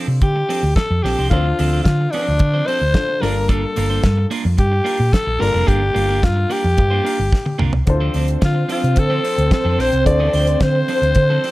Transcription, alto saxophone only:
0.22 G4
0.76 A4
1.03 G4
1.30 F4
1.84 F4
2.11 D4
2.67 C5
3.21 A#4
3.50 A4
4.59 G4
5.13 A4
5.40 A#4
5.68 G4
6.24 F4
6.52 G4
8.45 F4
8.72 F4
8.99 A4
9.53 A4
9.80 C5
10.06 D5
10.63 C5

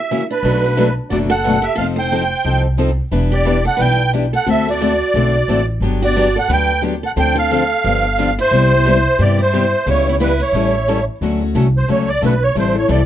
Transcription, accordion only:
Already playing: E5
0.32 B4
1.10 D5
1.30 F#5
1.63 E5
1.77 F5
1.99 G5
3.33 D5
3.67 F#5
3.81 G5
4.35 F#5
4.50 E5
4.70 D5
6.05 D5
6.39 F#5
6.53 G5
7.06 F#5
7.19 G5
7.38 F5
8.41 C5
9.22 D5
9.42 C5
9.90 C#5
10.12 C#5
10.22 B4
10.42 C#5
11.77 C5
11.91 C#5
12.09 D5
12.25 B4
12.43 C#5
12.59 C5
12.78 C#5
12.91 D5

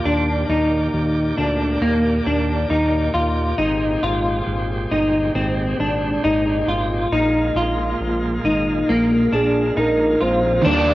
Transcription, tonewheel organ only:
Already playing: A#2 A#3 G4 D5
3.58 G#3 C4
7.14 G#3 A#3 F4
10.66 D#3 A#3 D5 G5

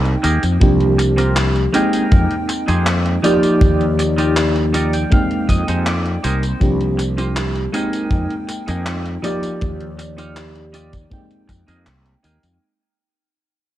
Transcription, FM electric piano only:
Already playing: G#3 A#3 C4 D#4 G5
0.60 F3 A#3 C4 D4 G4
1.72 G#3 A#3 C4 D#4 G5
3.23 F3 A#3 D#4 G4 D5
5.10 G#3 A#3 C4 D#4 G5
6.60 F3 A#3 C4 D4 G4
7.72 G#3 A#3 C4 D#4 G5
9.22 F3 A#3 D#4 G4 D5
11.10 G#3 A#3 C4 D#4 G5

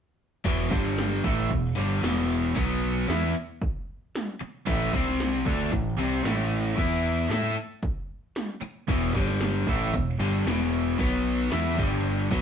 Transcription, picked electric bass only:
0.45 E1
0.71 G1
1.24 A1
1.51 E1
1.77 G1
2.02 E1
2.56 B1
3.09 E2
4.41 muted picked electric bass stroke
4.67 A1
4.94 C2
5.45 D2
5.72 A1
5.98 C2
6.24 A1
6.78 E2
7.30 A2
8.62 muted picked electric bass stroke
8.88 E1
9.15 G1
9.67 A1
9.94 E1
10.18 G1
10.46 E1
10.99 B1
11.52 E2
11.79 G1
12.31 B1

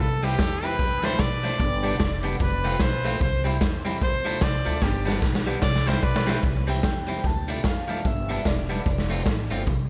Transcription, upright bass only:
0.00 C2
0.39 E2
0.79 D2
1.20 B1
1.60 G1
2.00 F1
2.40 F1
2.81 B1
3.21 C2
3.61 E2
4.01 D2
4.42 C2
4.66 D2
4.82 G1
5.22 B1
5.63 C2
6.03 B1
6.43 C2
7.24 D2
7.65 F2
8.05 G1
8.46 E1
8.86 F1
9.27 A1
9.51 G1
9.67 C2

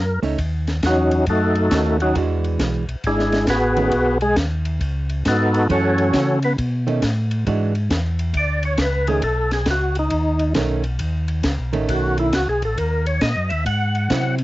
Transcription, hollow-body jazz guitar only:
0.23 A3 C#4 D#4
1.72 D#3 A3 C#4
2.16 E3 G#3 D4 F#4
3.77 D#3 A3 C#4
5.69 E3 A3 C#4
6.87 D#3 A3 C#4
7.47 E3 G#3 D4 F#4
9.08 D#3 A3 C#4
10.56 D#3 A3 C#4
11.73 D#3 A3 C#4
14.10 F#3 C4 E4

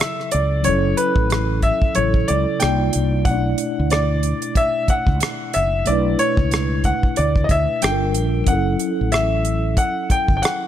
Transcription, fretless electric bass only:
0.34 C#2
0.67 F#1
1.17 A1
1.97 A1
2.30 C#2
2.63 C2
2.96 C2
3.27 B1
3.79 D2
4.89 muted fretless electric bass stroke
5.08 C#2
5.56 F#1
5.89 B1
6.39 C#2
7.19 D2
7.50 D2
7.84 G1
8.17 A#1
8.48 F#1
9.01 A1
10.11 muted fretless electric bass stroke
10.30 G1

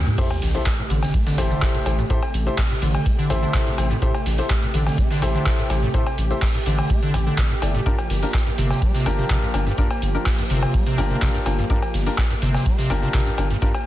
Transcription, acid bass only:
0.07 A2
0.18 A2
0.79 A2
0.90 D3
1.14 A3
1.27 D3
1.38 A1
1.51 D3
1.62 A2
1.75 A2
1.99 A2
2.10 A2
2.71 A2
2.82 D3
3.06 A3
3.19 D3
3.30 A1
3.43 D3
3.54 A2
3.67 A2
3.91 A2
4.02 A2
4.63 A2
4.74 D3
4.98 A3
5.11 D3
5.22 A1
5.35 D3
5.46 A2
5.59 A2
5.83 A2
5.94 A2
6.55 A2
6.66 D3
6.90 A3
7.03 D3
7.14 A1
7.27 D3
7.38 A2
7.51 A2
7.75 A2
7.86 G2
8.47 G2
8.58 C3
8.82 G3
8.95 C3
9.06 G1
9.19 C3
9.30 C3
9.43 G2
9.67 G2
9.78 G2
10.39 G2
10.50 C3
10.74 G3
10.87 C3
10.98 G1
11.11 C3
11.22 C3
11.35 G2
11.59 G2
11.70 G2
12.31 G2
12.42 C3
12.66 G3
12.79 C3
12.90 G1
13.03 C3
13.14 C3
13.27 G2
13.51 G2
13.62 G2

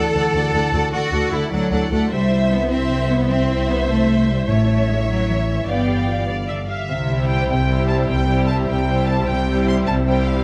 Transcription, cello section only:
Already playing: A4
0.94 F#4
1.33 E4
1.53 F#3
1.93 A3
2.12 G3
2.51 B3
2.72 C4
3.10 B3
3.30 C4
3.69 B3
3.88 A3
4.29 G3
4.49 A3
4.89 G#3
5.09 F#3
5.50 E3
5.70 B3
6.90 C3
7.50 C3
8.09 C3
8.69 C3
9.28 C3
9.88 C3

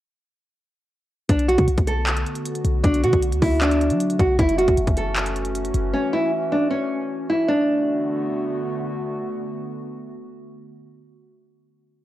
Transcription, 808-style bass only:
1.29 B1
1.58 B2
1.68 B1
1.78 B1
2.65 B1
2.84 B1
3.03 B2
3.13 B1
3.32 D2
3.42 D2
3.91 F#3
4.19 B1
4.39 F#1
4.68 F#1
4.78 F#1
4.87 F#1
5.74 F#1

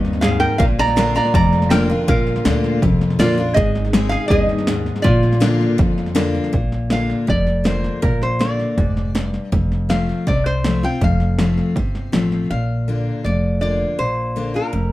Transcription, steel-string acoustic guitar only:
Already playing: G2
0.24 G#2
0.60 A#2
0.96 D3 A#3 D4 F4
1.15 D4 F4
1.35 F2
1.71 D3 A#3 D4 F4
1.90 D4 F4
2.08 A#2
2.45 D3 A#3 D4 F4
2.83 F2
3.19 D3 A#3 D4 F4
3.38 D4 F4
3.57 G#2
3.94 G#3 C4 D#4 G#4
4.12 D#4 G#4
4.31 G2
4.68 G#2
5.04 A#2
5.40 D3 A#3 D4 F4
5.78 F2
6.15 D3 A#3 D4 F4
6.53 A#2
6.90 D3 A#3 D4 F4
7.27 F2
7.64 D3 A#3 D4 F4
8.02 A#2
8.39 D3 A#3 D4 F4
8.78 G#2
9.15 G2
9.52 F2
9.89 F3 A3 C4 F4
10.27 C3
10.65 F3 A3 C4 F4
10.83 C4 F4
11.01 F2
11.38 F3 A3 C4 F4
11.77 C3
12.12 F3 A3 C4 F4
12.51 A#2
12.88 D3 A#3 D4 F4
13.26 F2
13.61 D3 A#3 D4 F4
13.99 A#2
14.36 D3 A#3 D4 F4
14.54 D4 F4
14.73 F2

